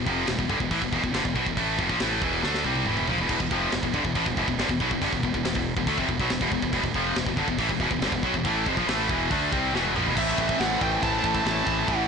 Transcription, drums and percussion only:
0.07 kick medium
0.27 snare loud
0.27 open hi-hat medium
0.39 kick medium
0.50 kick medium
0.60 kick medium
0.71 kick medium
0.71 open hi-hat medium
0.82 kick medium
0.93 kick medium
1.04 kick medium
1.14 snare loud
1.14 open hi-hat medium
1.25 kick medium
1.36 kick medium
1.46 kick medium
1.57 kick medium
1.57 open hi-hat medium
1.79 kick loud
1.90 kick medium
2.00 snare loud
2.00 open hi-hat medium
2.22 kick loud
2.43 snare medium
2.54 snare medium
2.64 high tom medium
2.75 high tom medium
2.86 mid tom medium
2.97 mid tom medium
3.08 floor tom medium
3.18 floor tom medium
3.29 kick loud
3.29 open hi-hat medium
3.29 crash medium
3.40 kick medium
3.51 kick medium
3.72 snare loud
3.72 open hi-hat medium
3.83 kick medium
3.94 kick medium
4.05 kick medium
4.15 kick loud
4.15 open hi-hat medium
4.26 kick medium
4.37 kick medium
4.48 kick medium
4.59 snare loud
4.59 open hi-hat medium
4.69 kick medium
4.80 kick medium
4.91 kick medium
5.02 kick medium
5.02 open hi-hat medium
5.13 kick medium
5.23 kick medium
5.34 kick medium
5.45 snare loud
5.45 open hi-hat medium
5.55 kick medium
5.77 kick medium
5.87 kick medium
5.87 open hi-hat medium
5.98 kick medium
6.09 kick medium
6.20 kick medium
6.30 snare loud
6.30 open hi-hat medium
6.41 kick loud
6.52 kick medium
6.62 kick medium
6.73 kick medium
6.73 open hi-hat medium
6.84 kick medium
6.94 kick medium
7.16 snare loud
7.16 open hi-hat medium
7.26 kick medium
7.37 kick medium
7.48 kick medium
7.58 kick medium
7.58 open hi-hat medium
7.69 kick medium
7.80 kick medium
7.91 kick medium
8.02 snare loud
8.02 open hi-hat medium
8.12 kick medium
8.23 kick medium
8.34 kick medium
8.45 kick loud
8.45 open hi-hat medium
8.66 kick loud
8.77 kick medium
8.88 snare loud
8.88 open hi-hat medium
9.09 kick loud
9.31 kick loud
9.31 open hi-hat medium
9.52 kick loud
9.75 snare medium
9.85 high tom medium
9.96 mid tom medium
10.06 floor tom medium
10.17 kick loud
10.17 crash loud
10.17 china medium
10.38 kick medium
10.49 kick medium
10.60 snare loud
10.60 china medium
10.81 kick medium
11.03 kick loud
11.03 china medium
11.24 kick medium
11.35 kick medium
11.46 snare loud
11.46 china medium
11.67 kick medium
11.88 kick loud
11.88 china medium

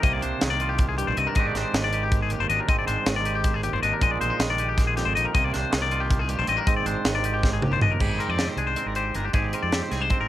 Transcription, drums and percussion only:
0.03 kick loud
0.03 closed hi-hat medium
0.22 closed hi-hat medium
0.41 snare loud
0.41 closed hi-hat medium
0.60 closed hi-hat medium
0.79 kick loud
0.79 closed hi-hat medium
0.98 closed hi-hat medium
1.17 closed hi-hat medium
1.35 kick loud
1.35 closed hi-hat medium
1.55 snare soft
1.55 closed hi-hat medium
1.74 snare loud
1.74 closed hi-hat medium
1.93 closed hi-hat medium
2.12 kick loud
2.12 closed hi-hat medium
2.30 closed hi-hat medium
2.50 closed hi-hat medium
2.69 kick loud
2.69 closed hi-hat medium
2.88 closed hi-hat medium
3.06 snare loud
3.06 closed hi-hat medium
3.25 closed hi-hat medium
3.44 kick loud
3.44 closed hi-hat medium
3.63 closed hi-hat medium
3.83 closed hi-hat medium
4.01 kick loud
4.01 closed hi-hat medium
4.21 closed hi-hat medium
4.40 snare loud
4.40 closed hi-hat medium
4.58 closed hi-hat medium
4.78 kick loud
4.78 snare soft
4.78 closed hi-hat loud
4.97 snare soft
4.97 closed hi-hat medium
5.17 closed hi-hat medium
5.35 kick loud
5.35 closed hi-hat medium
5.54 snare soft
5.54 closed hi-hat medium
5.73 snare loud
5.73 closed hi-hat medium
5.91 closed hi-hat medium
6.10 kick loud
6.10 closed hi-hat medium
6.29 closed hi-hat medium
6.47 closed hi-hat medium
6.67 kick loud
6.67 closed hi-hat loud
6.86 closed hi-hat medium
7.05 snare loud
7.05 closed hi-hat medium
7.24 closed hi-hat medium
7.43 kick loud
7.43 snare medium
7.62 mid tom medium
7.82 floor tom loud
8.00 kick medium
8.00 crash medium
8.20 closed hi-hat soft
8.39 snare medium
8.39 closed hi-hat medium
8.57 closed hi-hat soft
8.76 closed hi-hat medium
8.95 closed hi-hat medium
9.15 closed hi-hat medium
9.33 kick loud
9.33 closed hi-hat medium
9.53 closed hi-hat medium
9.72 snare loud
9.72 closed hi-hat medium
9.91 snare soft
9.91 closed hi-hat medium
10.10 kick medium
10.10 closed hi-hat medium

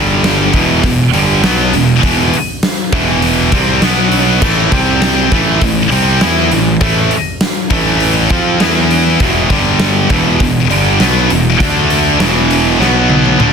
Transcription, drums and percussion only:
0.24 snare loud
0.24 open hi-hat medium
0.53 kick loud
0.53 open hi-hat medium
0.84 kick medium
0.84 open hi-hat medium
1.13 open hi-hat medium
1.44 snare loud
1.44 open hi-hat medium
1.73 open hi-hat medium
2.03 kick loud
2.03 open hi-hat medium
2.34 open hi-hat medium
2.63 snare loud
2.63 open hi-hat medium
2.92 kick loud
2.92 open hi-hat medium
3.22 open hi-hat medium
3.52 kick loud
3.52 open hi-hat medium
3.82 snare loud
3.82 open hi-hat medium
4.12 open hi-hat medium
4.42 kick loud
4.42 crash loud
4.72 kick loud
4.72 open hi-hat medium
5.02 snare loud
5.02 open hi-hat medium
5.32 kick loud
5.32 open hi-hat medium
5.61 kick loud
5.61 open hi-hat medium
5.92 open hi-hat medium
6.21 snare loud
6.21 open hi-hat medium
6.51 open hi-hat medium
6.81 kick loud
6.81 open hi-hat medium
7.11 open hi-hat medium
7.41 snare loud
7.41 open hi-hat medium
7.70 kick loud
7.70 open hi-hat medium
8.00 open hi-hat medium
8.30 kick loud
8.30 open hi-hat medium
8.60 snare loud
8.60 open hi-hat medium
8.91 open hi-hat medium
9.20 kick loud
9.20 open hi-hat medium
9.50 kick medium
9.50 open hi-hat medium
9.79 snare loud
9.79 open hi-hat medium
10.10 kick loud
10.10 open hi-hat medium
10.40 kick loud
10.40 open hi-hat medium
10.71 open hi-hat medium
11.00 snare loud
11.00 open hi-hat medium
11.30 open hi-hat medium
11.60 kick loud
11.60 open hi-hat medium
11.90 open hi-hat medium
12.20 snare loud
12.20 open hi-hat medium
12.51 open hi-hat medium
12.81 snare medium
13.10 high tom medium
13.26 high tom medium
13.40 mid tom medium

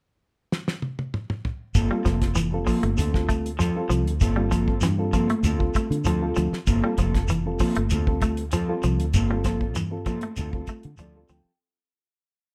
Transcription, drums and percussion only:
0.52 snare medium
0.68 snare medium
0.82 high tom medium
0.99 high tom medium
1.14 mid tom medium
1.30 mid tom medium
1.45 floor tom medium
1.75 kick medium
1.75 closed hi-hat medium
1.75 shekere medium
2.05 kick medium
2.05 snare soft
2.05 closed hi-hat soft
2.05 shekere soft
2.22 kick medium
2.22 snare soft
2.22 closed hi-hat medium
2.35 closed hi-hat medium
2.35 shekere medium
2.67 kick medium
2.67 open hi-hat medium
2.67 shekere soft
2.83 closed hi-hat medium
2.97 closed hi-hat medium
2.97 shekere medium
3.14 kick medium
3.14 snare soft
3.29 kick medium
3.29 closed hi-hat soft
3.29 shekere soft
3.46 closed hi-hat soft
3.60 closed hi-hat medium
3.60 shekere medium
3.90 closed hi-hat medium
3.90 shekere soft
4.08 closed hi-hat medium
4.20 kick medium
4.20 closed hi-hat medium
4.20 shekere medium
4.51 kick medium
4.51 closed hi-hat medium
4.51 shekere soft
4.68 kick medium
4.81 snare soft
4.81 closed hi-hat medium
4.81 shekere medium
5.13 kick medium
5.13 closed hi-hat soft
5.13 shekere soft
5.30 closed hi-hat soft
5.44 closed hi-hat medium
5.44 shekere medium
5.60 kick medium
5.74 kick medium
5.74 closed hi-hat soft
5.74 shekere soft
5.92 closed hi-hat soft
6.04 closed hi-hat medium
6.04 shekere medium
6.36 closed hi-hat soft
6.36 shekere soft
6.53 snare soft
6.67 kick medium
6.67 closed hi-hat medium
6.67 shekere medium
6.98 kick medium
6.98 closed hi-hat medium
6.98 shekere soft
7.14 kick medium
7.14 snare soft
7.14 closed hi-hat soft
7.28 closed hi-hat medium
7.28 shekere medium
7.59 kick medium
7.59 open hi-hat medium
7.59 shekere soft
7.75 closed hi-hat medium
7.90 closed hi-hat medium
7.90 shekere medium
8.07 kick medium
8.21 kick medium
8.21 closed hi-hat soft
8.21 shekere soft
8.37 closed hi-hat medium
8.52 closed hi-hat medium
8.52 shekere medium
8.83 closed hi-hat medium
8.83 shekere soft
9.00 closed hi-hat soft
9.14 kick medium
9.14 closed hi-hat medium
9.14 shekere medium
9.44 kick medium
9.44 snare soft
9.44 closed hi-hat medium
9.44 shekere soft
9.61 kick medium
9.75 closed hi-hat medium
9.75 shekere medium
10.06 kick medium
10.06 closed hi-hat soft
10.06 shekere soft
10.21 closed hi-hat soft
10.36 closed hi-hat medium
10.36 shekere medium
10.53 kick medium
10.67 kick medium
10.67 closed hi-hat soft
10.67 shekere soft
10.83 closed hi-hat soft
10.97 closed hi-hat medium
10.97 shekere medium
11.29 closed hi-hat soft
11.29 shekere soft

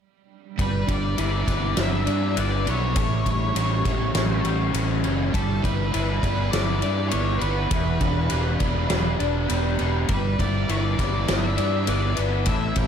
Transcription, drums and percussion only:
0.59 kick loud
0.59 ride medium
0.88 kick medium
0.88 ride medium
1.18 ride medium
1.48 kick medium
1.48 snare soft
1.48 ride medium
1.77 snare loud
1.77 ride loud
2.07 ride medium
2.37 ride loud
2.67 ride medium
2.96 kick loud
2.96 ride medium
3.26 kick medium
3.26 ride medium
3.56 ride loud
3.85 kick loud
3.85 snare soft
3.85 ride medium
4.15 snare loud
4.15 ride medium
4.45 ride medium
4.74 ride loud
5.04 ride medium
5.34 kick loud
5.34 ride loud
5.64 kick medium
5.64 ride medium
5.94 ride medium
6.23 kick medium
6.23 ride medium
6.53 snare loud
6.53 ride loud
6.82 ride medium
7.11 ride loud
7.41 ride medium
7.71 kick loud
7.71 ride loud
8.01 kick medium
8.01 ride medium
8.30 ride medium
8.60 kick medium
8.60 ride medium
8.90 snare loud
8.90 ride medium
9.20 ride medium
9.50 ride medium
9.79 ride medium
10.09 kick loud
10.09 ride medium
10.39 kick medium
10.39 ride medium
10.69 ride medium
10.99 kick medium
10.99 snare soft
10.99 ride medium
11.28 snare loud
11.28 ride medium
11.58 ride medium
11.87 ride medium
12.17 ride medium
12.46 kick loud
12.46 ride loud
12.76 kick medium
12.76 ride medium

